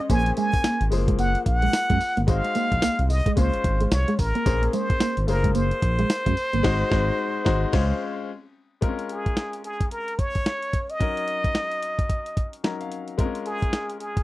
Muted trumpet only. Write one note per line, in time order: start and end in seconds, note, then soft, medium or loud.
0.00 0.12 D#5 loud
0.11 0.37 G#5 loud
0.38 0.88 G#5 loud
1.19 1.44 F#5 loud
1.47 2.30 F#5 loud
2.28 3.11 F5 loud
3.10 3.39 D#5 loud
3.37 3.94 C5 medium
3.92 4.21 C#5 loud
4.19 4.75 A#4 loud
4.74 5.28 C5 loud
5.29 5.57 A#4 medium
5.56 8.28 C5 loud
9.10 9.61 G#4 medium
9.65 9.90 G#4 medium
9.92 10.21 A#4 medium
10.19 10.92 C#5 loud
10.90 12.54 D#5 loud
13.46 13.97 G#4 medium
14.00 14.23 G#4 medium